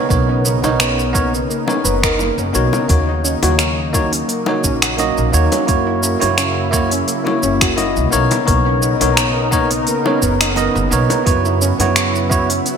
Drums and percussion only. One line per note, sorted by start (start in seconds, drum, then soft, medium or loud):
0.10 kick loud
0.10 shaker soft
0.45 shaker medium
0.64 high bongo medium
0.64 shaker soft
0.80 finger snap medium
0.80 shaker soft
0.99 shaker soft
1.15 kick loud
1.15 shaker medium
1.34 shaker soft
1.51 shaker soft
1.68 high bongo medium
1.68 shaker soft
1.85 shaker medium
2.04 finger snap medium
2.04 kick loud
2.04 shaker soft
2.19 high bongo medium
2.19 shaker soft
2.38 shaker soft
2.55 shaker medium
2.73 high bongo medium
2.73 shaker soft
2.89 kick loud
2.89 open hi-hat soft
2.89 shaker soft
3.25 shaker medium
3.43 open hi-hat medium
3.43 high bongo medium
3.43 shaker soft
3.59 finger snap medium
3.59 open hi-hat soft
3.59 shaker soft
3.94 kick loud
3.94 high bongo medium
3.94 shaker medium
4.13 open hi-hat soft
4.13 shaker soft
4.29 open hi-hat soft
4.29 shaker soft
4.46 high bongo medium
4.64 kick medium
4.64 shaker medium
4.82 finger snap medium
4.82 open hi-hat medium
4.82 shaker soft
4.98 open hi-hat soft
4.98 high bongo medium
4.98 shaker soft
5.18 shaker soft
5.34 shaker medium
5.52 open hi-hat soft
5.52 high bongo medium
5.52 shaker soft
5.68 kick loud
5.68 open hi-hat soft
5.68 shaker soft
6.03 shaker medium
6.22 open hi-hat soft
6.22 high bongo medium
6.22 shaker soft
6.38 finger snap medium
6.38 open hi-hat soft
6.38 shaker soft
6.73 kick medium
6.73 shaker medium
6.91 open hi-hat medium
6.91 shaker soft
7.08 open hi-hat soft
7.08 shaker soft
7.27 high bongo medium
7.43 shaker medium
7.61 finger snap medium
7.61 kick loud
7.61 open hi-hat medium
7.61 shaker soft
7.78 open hi-hat soft
7.78 high bongo medium
7.78 shaker soft
7.96 shaker soft
8.13 shaker medium
8.31 open hi-hat medium
8.31 high bongo medium
8.31 shaker soft
8.48 kick loud
8.48 open hi-hat soft
8.48 shaker soft
8.82 shaker medium
9.01 open hi-hat medium
9.01 high bongo medium
9.01 shaker soft
9.17 finger snap medium
9.17 open hi-hat soft
9.17 shaker soft
9.52 kick medium
9.52 high bongo medium
9.52 shaker medium
9.71 open hi-hat medium
9.71 shaker soft
9.87 open hi-hat soft
9.87 shaker soft
10.06 high bongo medium
10.22 kick medium
10.22 shaker medium
10.41 finger snap medium
10.41 open hi-hat medium
10.41 shaker soft
10.56 open hi-hat soft
10.56 high bongo medium
10.56 shaker soft
10.76 shaker soft
10.92 shaker medium
11.10 open hi-hat medium
11.10 high bongo medium
11.10 shaker soft
11.27 kick loud
11.27 open hi-hat soft
11.27 shaker soft
11.45 shaker soft
11.62 shaker medium
11.80 open hi-hat medium
11.80 high bongo medium
11.80 shaker soft
11.96 finger snap medium
11.96 open hi-hat soft
11.96 shaker soft
12.15 shaker soft
12.31 kick medium
12.31 shaker medium
12.50 open hi-hat medium
12.50 shaker soft
12.66 open hi-hat soft
12.66 shaker soft